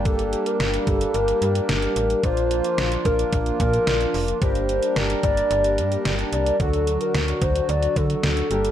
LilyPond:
<<
  \new Staff \with { instrumentName = "Soft synth lead" } { \time 4/4 \key g \minor \tempo 4 = 110 a'8. bes'8. a'8 bes'8 bes'4. | c''4. bes'4 bes'4. | r4 bes'8 d''4. d''8 d''8 | a'8. bes'8. c''8 d''8 a'4. | }
  \new Staff \with { instrumentName = "Analog polysynth" } { \time 4/4 \key g \minor <g bes d' g'>1 | <f bes d' f'>1 | <g bes d' g'>1 | <fis d' fis'>2.~ <fis d' fis'>8 <g bes d' g'>8 | }
  \new Staff \with { instrumentName = "Harmonium" } { \time 4/4 \key g \minor d'1~ | d'1~ | d'1 | fis2.~ fis8 d'8 | }
  \new Staff \with { instrumentName = "Harmonium" } { \time 4/4 \key g \minor <g bes>1 | <bes f'>1 | <g bes'>1 | <d fis'>2.~ <d fis'>8 <g bes'>8 | }
  \new Staff \with { instrumentName = "FM bass" } { \clef bass \time 4/4 \key g \minor g,,4 g,,8 g,,8 g,,8 g,8 g,,8 a,,8 | bes,,4 bes,,8 bes,,8 bes,,8 bes,8 bes,,8 f,,8 | g,,4 g,,8 g,,8 g,,8 g,8 g,,8 c,8 | d,4 d,8 d,8 d,8 d8 d,8 g,,8 | }
  \new DrumStaff \with { instrumentName = "Drums" } \drummode { \time 4/4 <hh bd>16 hh16 hh16 hh16 <hh sn>16 hh16 <hh bd>16 hh16 hh16 hh16 hh16 hh16 <hh sn>16 hh16 hh16 hh16 | <hh bd>16 hh16 hh16 hh16 <hh sn>16 hh16 <hh bd>16 hh16 <hh bd>16 hh16 <hh bd>16 hh16 <hh sn>16 hh16 hho16 hh16 | <hh bd>16 hh16 hh16 hh16 <hh sn>16 hh16 <hh bd>16 hh16 hh16 hh16 hh16 hh16 <hh sn>16 hh16 hh16 hh16 | <hh bd>16 hh16 hh16 hh16 <hh sn>16 hh16 <hh bd>16 hh16 hh16 hh16 <hh bd>16 hh16 <hh sn>16 hh16 hh16 hh16 | }
>>